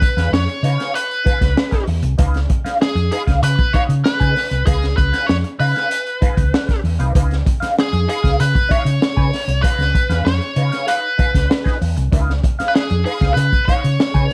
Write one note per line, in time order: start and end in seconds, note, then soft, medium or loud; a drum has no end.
0.00 0.35 B4 loud
0.00 muted clean electric guitar stroke soft
0.00 kick loud
0.00 closed hi-hat medium
0.17 0.30 E2 medium
0.17 0.31 D#4 medium
0.17 0.32 G#4 medium
0.17 0.32 B4 medium
0.17 0.32 F5 medium
0.17 snare soft
0.17 closed hi-hat soft
0.32 0.46 F2 medium
0.32 0.97 C#5 loud
0.32 snare loud
0.48 muted clean electric guitar stroke soft
0.48 closed hi-hat soft
0.63 0.76 C#3 medium
0.63 0.79 D#4 medium
0.63 0.78 G#4 medium
0.63 0.78 B4 medium
0.63 0.77 F5 medium
0.63 closed hi-hat medium
0.78 0.93 D#4 medium
0.78 0.93 G#4 medium
0.78 0.94 B4 medium
0.78 0.94 F5 medium
0.78 snare soft
0.78 closed hi-hat soft
0.94 1.84 B4 loud
0.94 muted clean electric guitar stroke soft
0.94 closed hi-hat loud
1.11 closed hi-hat soft
1.24 1.41 D#4 medium
1.24 1.41 G#4 medium
1.24 1.41 B4 medium
1.24 1.40 F5 medium
1.24 muted fingered electric bass stroke soft
1.24 kick loud
1.24 closed hi-hat medium
1.41 1.55 C#2 medium
1.41 muted clean electric guitar stroke soft
1.41 kick medium
1.41 snare soft
1.41 closed hi-hat medium
1.57 muted clean electric guitar stroke soft
1.57 snare loud
1.71 1.87 D#4 medium
1.71 1.88 G#4 medium
1.71 1.88 B4 medium
1.71 1.88 G#5 medium
1.71 kick medium
1.71 snare soft
1.71 closed hi-hat soft
1.87 2.01 E2 medium
1.87 muted clean electric guitar stroke soft
1.87 open hi-hat medium
2.03 2.16 C2 medium
2.03 muted clean electric guitar stroke medium
2.03 closed hi-hat medium
2.18 2.45 C#2 loud
2.18 2.38 D#4 medium
2.18 2.39 G#4 loud
2.18 2.39 B4 loud
2.18 2.39 F5 medium
2.18 kick loud
2.18 closed hi-hat loud
2.34 snare soft
2.34 closed hi-hat soft
2.49 muted clean electric guitar stroke soft
2.49 kick loud
2.49 closed hi-hat medium
2.64 2.79 D#4 medium
2.64 2.79 G#4 medium
2.64 2.79 B4 medium
2.64 2.80 F5 medium
2.64 muted fingered electric bass stroke medium
2.64 snare soft
2.64 closed hi-hat medium
2.80 3.10 G#4 medium
2.80 muted clean electric guitar stroke soft
2.80 snare loud
2.95 3.09 F2 medium
2.95 muted clean electric guitar stroke soft
2.95 closed hi-hat soft
3.11 3.27 D#4 medium
3.11 3.27 G#4 medium
3.11 3.21 G#4 medium
3.11 3.26 B4 medium
3.11 3.25 F5 medium
3.11 closed hi-hat medium
3.27 3.41 C#2 medium
3.27 3.40 D#4 soft
3.27 3.41 G#4 medium
3.27 3.42 B4 medium
3.27 3.42 F5 medium
3.27 kick medium
3.27 snare soft
3.27 closed hi-hat soft
3.42 3.56 C#3 loud
3.42 3.75 B4 loud
3.42 muted clean electric guitar stroke soft
3.42 closed hi-hat loud
3.58 muted clean electric guitar stroke soft
3.58 kick loud
3.58 closed hi-hat soft
3.73 3.94 D#4 medium
3.73 3.89 G#4 medium
3.73 3.88 B4 loud
3.73 3.82 C#5 loud
3.73 3.88 F5 medium
3.73 muted fingered electric bass stroke soft
3.73 kick loud
3.73 closed hi-hat medium
3.89 4.02 C#3 loud
3.89 muted clean electric guitar stroke soft
3.89 closed hi-hat medium
4.04 4.66 B4 medium
4.04 muted clean electric guitar stroke soft
4.04 snare loud
4.20 4.34 C#3 medium
4.20 4.35 D#4 medium
4.20 4.35 G#4 medium
4.20 4.36 B4 medium
4.20 4.37 G#5 medium
4.20 kick medium
4.20 closed hi-hat soft
4.36 muted clean electric guitar stroke soft
4.36 snare soft
4.36 open hi-hat medium
4.51 4.64 C2 medium
4.51 muted clean electric guitar stroke soft
4.51 closed hi-hat medium
4.66 4.93 C#2 loud
4.66 4.87 D#4 medium
4.66 4.96 G#4 loud
4.66 4.87 G#4 medium
4.66 4.87 B4 medium
4.66 4.88 F5 medium
4.66 kick loud
4.66 closed hi-hat loud
4.82 snare soft
4.82 closed hi-hat soft
4.97 5.11 C#2 loud
4.97 5.30 B4 medium
4.97 muted clean electric guitar stroke soft
4.97 kick loud
4.97 closed hi-hat medium
5.12 5.27 D#4 medium
5.12 5.27 G#4 medium
5.12 5.27 B4 medium
5.12 5.28 F5 medium
5.12 snare soft
5.12 closed hi-hat medium
5.27 5.42 F2 medium
5.27 5.35 C#5 loud
5.27 snare loud
5.44 muted clean electric guitar stroke soft
5.44 closed hi-hat soft
5.59 5.73 C#3 medium
5.59 5.75 D#4 medium
5.59 5.75 G#4 medium
5.59 6.80 B4 medium
5.59 5.74 B4 medium
5.59 5.73 F5 medium
5.59 open hi-hat medium
5.74 5.89 D#4 medium
5.74 5.89 G#4 medium
5.74 5.90 B4 medium
5.74 5.90 F5 medium
5.74 snare soft
5.74 closed hi-hat soft
5.90 muted clean electric guitar stroke soft
5.90 closed hi-hat loud
6.06 muted clean electric guitar stroke soft
6.06 closed hi-hat soft
6.21 6.42 D#4 medium
6.21 6.37 G#4 medium
6.21 6.37 B4 medium
6.21 6.36 F5 medium
6.21 muted fingered electric bass stroke soft
6.21 kick loud
6.21 closed hi-hat medium
6.37 6.50 C#2 medium
6.37 muted clean electric guitar stroke medium
6.37 kick loud
6.37 closed hi-hat medium
6.53 muted clean electric guitar stroke soft
6.53 snare loud
6.69 muted clean electric guitar stroke soft
6.69 kick medium
6.69 snare soft
6.69 closed hi-hat soft
6.84 6.97 E2 medium
6.84 open hi-hat medium
6.99 7.13 C2 medium
6.99 7.13 D#4 medium
6.99 7.14 G#4 medium
6.99 7.14 B4 medium
6.99 7.15 F5 medium
6.99 closed hi-hat medium
7.14 7.41 C#2 loud
7.14 7.35 D#4 medium
7.14 7.35 G#4 medium
7.14 7.36 B4 medium
7.14 7.36 F5 medium
7.14 kick loud
7.14 closed hi-hat loud
7.31 snare soft
7.31 closed hi-hat soft
7.45 muted clean electric guitar stroke soft
7.45 kick loud
7.45 closed hi-hat medium
7.60 7.76 D#4 medium
7.60 7.76 G#4 medium
7.60 7.77 B4 medium
7.60 7.77 F5 medium
7.60 muted fingered electric bass stroke soft
7.60 snare soft
7.60 closed hi-hat medium
7.77 8.09 G#4 loud
7.77 muted clean electric guitar stroke soft
7.77 snare loud
7.93 8.06 F2 medium
7.93 muted clean electric guitar stroke soft
7.93 closed hi-hat soft
8.07 8.24 D#4 medium
8.07 8.23 G#4 medium
8.07 8.41 G#4 medium
8.07 8.22 B4 medium
8.07 8.22 F5 medium
8.07 closed hi-hat medium
8.23 8.37 C#2 medium
8.23 8.37 D#4 soft
8.23 8.37 G#4 medium
8.23 8.38 B4 medium
8.23 8.38 F5 medium
8.23 kick medium
8.23 snare soft
8.23 closed hi-hat soft
8.38 8.53 C#3 loud
8.38 8.72 B4 loud
8.38 muted clean electric guitar stroke soft
8.38 closed hi-hat loud
8.53 muted clean electric guitar stroke medium
8.53 kick medium
8.53 closed hi-hat soft
8.69 8.90 D#4 medium
8.69 8.86 G#4 medium
8.69 8.85 B4 medium
8.69 9.67 C#5 loud
8.69 8.85 F5 medium
8.69 muted fingered electric bass stroke soft
8.69 kick loud
8.69 closed hi-hat medium
8.85 8.99 C#3 medium
8.85 muted clean electric guitar stroke medium
8.85 closed hi-hat medium
9.01 muted clean electric guitar stroke soft
9.01 snare loud
9.16 9.30 C#3 loud
9.16 9.31 D#4 medium
9.16 9.32 G#4 medium
9.16 9.32 B4 medium
9.16 9.33 G#5 medium
9.16 kick medium
9.32 muted clean electric guitar stroke soft
9.32 snare soft
9.32 open hi-hat medium
9.48 9.61 C2 medium
9.48 muted clean electric guitar stroke medium
9.48 closed hi-hat medium
9.62 9.83 D#4 medium
9.62 9.83 G#4 medium
9.62 10.27 B4 medium
9.62 9.84 B4 medium
9.62 9.84 F5 medium
9.62 kick loud
9.62 closed hi-hat loud
9.78 9.92 C#2 medium
9.78 snare soft
9.78 closed hi-hat soft
9.93 muted clean electric guitar stroke soft
9.93 kick loud
9.93 closed hi-hat medium
10.10 10.23 E2 medium
10.10 10.24 D#4 medium
10.10 10.24 G#4 medium
10.10 10.25 B4 medium
10.10 10.25 F5 medium
10.10 snare soft
10.10 closed hi-hat medium
10.25 10.39 F2 medium
10.25 10.89 C#5 loud
10.25 muted clean electric guitar stroke medium
10.25 snare loud
10.41 muted clean electric guitar stroke soft
10.41 closed hi-hat soft
10.56 10.70 C#3 loud
10.56 10.72 D#4 medium
10.56 10.72 G#4 medium
10.56 10.71 B4 medium
10.56 10.71 F5 medium
10.56 closed hi-hat medium
10.72 10.85 D#4 medium
10.72 10.85 G#4 medium
10.72 10.86 B4 medium
10.72 10.87 F5 medium
10.72 snare soft
10.72 closed hi-hat soft
10.86 11.07 D#4 medium
10.86 11.02 G#4 loud
10.86 11.02 B4 medium
10.86 11.77 B4 medium
10.86 11.01 F5 loud
10.86 closed hi-hat loud
11.02 muted clean electric guitar stroke soft
11.18 11.34 D#4 medium
11.18 11.34 G#4 medium
11.18 11.33 B4 medium
11.18 11.32 F5 medium
11.18 muted fingered electric bass stroke soft
11.18 kick loud
11.18 closed hi-hat medium
11.33 11.48 C#2 medium
11.33 muted clean electric guitar stroke soft
11.33 kick medium
11.33 snare soft
11.33 closed hi-hat medium
11.49 muted clean electric guitar stroke soft
11.49 snare loud
11.64 11.79 D#4 medium
11.64 11.79 G#4 medium
11.64 11.80 B4 medium
11.64 11.81 G#5 medium
11.64 kick medium
11.64 snare soft
11.64 closed hi-hat soft
11.80 11.94 E2 medium
11.80 muted clean electric guitar stroke soft
11.80 open hi-hat medium
11.97 12.10 C2 medium
11.97 muted clean electric guitar stroke medium
11.97 closed hi-hat medium
12.12 12.39 C#2 loud
12.12 12.32 D#4 medium
12.12 12.33 G#4 medium
12.12 12.33 B4 medium
12.12 12.33 F5 medium
12.12 kick loud
12.12 closed hi-hat loud
12.30 snare soft
12.44 muted clean electric guitar stroke soft
12.44 kick loud
12.44 closed hi-hat medium
12.59 12.74 D#4 medium
12.59 12.74 G#4 medium
12.59 12.75 B4 medium
12.59 12.75 F5 medium
12.59 muted fingered electric bass stroke medium
12.59 snare soft
12.59 closed hi-hat medium
12.68 12.75 B4 medium
12.75 13.04 G#4 loud
12.75 muted clean electric guitar stroke soft
12.75 snare loud
12.90 13.04 F2 medium
12.90 muted clean electric guitar stroke soft
12.90 closed hi-hat soft
13.05 13.21 D#4 medium
13.05 13.34 G#4 medium
13.05 13.21 G#4 medium
13.05 13.20 B4 medium
13.05 13.19 F5 medium
13.05 open hi-hat medium
13.21 13.34 C#2 medium
13.21 13.35 D#4 medium
13.21 13.36 G#4 medium
13.21 13.36 B4 medium
13.21 13.37 F5 medium
13.21 kick medium
13.21 snare soft
13.21 closed hi-hat medium
13.34 13.50 C#3 loud
13.34 13.68 B4 loud
13.34 muted clean electric guitar stroke soft
13.34 closed hi-hat loud
13.52 muted clean electric guitar stroke soft
13.52 kick medium
13.52 closed hi-hat soft
13.65 13.88 D#4 medium
13.65 13.82 G#4 medium
13.65 13.82 B4 loud
13.65 14.33 C#5 loud
13.65 muted fingered electric bass stroke soft
13.65 kick loud
13.65 closed hi-hat medium
13.69 13.81 F5 medium
13.82 13.97 C#3 medium
13.82 muted clean electric guitar stroke medium
13.82 closed hi-hat medium
13.98 muted clean electric guitar stroke soft
13.98 snare loud
14.14 14.28 C#3 loud
14.14 14.28 D#4 medium
14.14 14.28 G#4 medium
14.14 14.29 B4 medium
14.14 14.30 G#5 medium
14.14 kick medium
14.14 closed hi-hat soft
14.30 muted clean electric guitar stroke soft